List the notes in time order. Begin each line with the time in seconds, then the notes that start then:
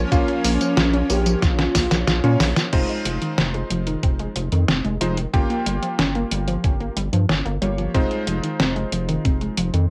Already playing: F3 A#3 C#4
0.12 A#1 A#3 C#4 F4 F5, kick, closed hi-hat, tambourine
0.28 C#4, closed hi-hat
0.44 A#1 A#3, open hi-hat, tambourine
0.61 F3, closed hi-hat, tambourine
0.77 A#1 F4, snare, closed hi-hat, tambourine
0.93 C#4, closed hi-hat
1.10 A#1 A#3 G4, open hi-hat, tambourine
1.26 F3, closed hi-hat, tambourine
1.42 A#1 F4, kick, snare, closed hi-hat, tambourine
1.58 C#4, snare, closed hi-hat
1.75 A#1 A#3, kick, snare, open hi-hat, tambourine
1.91 A#1 F3, snare, closed hi-hat, tambourine
2.07 A#1 F4, snare, closed hi-hat, tambourine
2.24 A#2 A#3 C#4 F4 C#5, closed hi-hat
2.40 A#1 A#3, snare, open hi-hat, tambourine
2.56 F3, snare, closed hi-hat, tambourine
2.73 F1 G#3 C4 D#4 F4 C5, kick, closed hi-hat, crash
2.89 G#3, closed hi-hat
3.05 F1 F3, closed hi-hat
3.22 D#3, closed hi-hat
3.38 F1 C4, snare, closed hi-hat
3.54 G#3, closed hi-hat
3.70 F1 F3, closed hi-hat
3.87 D#3, closed hi-hat
4.03 F1 C4, kick, closed hi-hat
4.19 G#3, closed hi-hat
4.36 F1 F3, closed hi-hat
4.52 F2 D#3, closed hi-hat
4.68 F1 C4, snare, closed hi-hat
4.85 F1 G#3, closed hi-hat
5.01 F1 F3 G#3 D#4 F4 C5, closed hi-hat
5.17 D#3, closed hi-hat
5.33 G1 A#3 C#4 F4 G4 G5, kick, closed hi-hat
5.50 A#3, closed hi-hat
5.66 G1 G3, closed hi-hat
5.83 F3, closed hi-hat
5.99 G1 C#4, snare, closed hi-hat
6.15 A#3, closed hi-hat
6.31 G1 G3, closed hi-hat
6.48 F3, closed hi-hat
6.64 G1 C#4, kick, closed hi-hat
6.80 A#3, closed hi-hat
6.97 G1 G3, closed hi-hat
7.13 G2 F3, closed hi-hat
7.29 G1 C#4, snare, closed hi-hat
7.45 G1 A#3, closed hi-hat
7.62 G1 G3 A#3 F4 G4 C#5, closed hi-hat
7.78 F3, closed hi-hat
7.94 F1 G#3 C4 D#4 F4 C5, kick, closed hi-hat
8.11 G#3, closed hi-hat
8.27 F1 F3, closed hi-hat
8.43 D#3, closed hi-hat
8.60 F1 C4, snare, closed hi-hat
8.76 G#3, closed hi-hat
8.92 F1 F3, closed hi-hat
9.09 D#3, closed hi-hat
9.25 F1 C4, kick, closed hi-hat
9.41 G#3, closed hi-hat
9.57 F1 F3, closed hi-hat
9.74 F2 D#3, closed hi-hat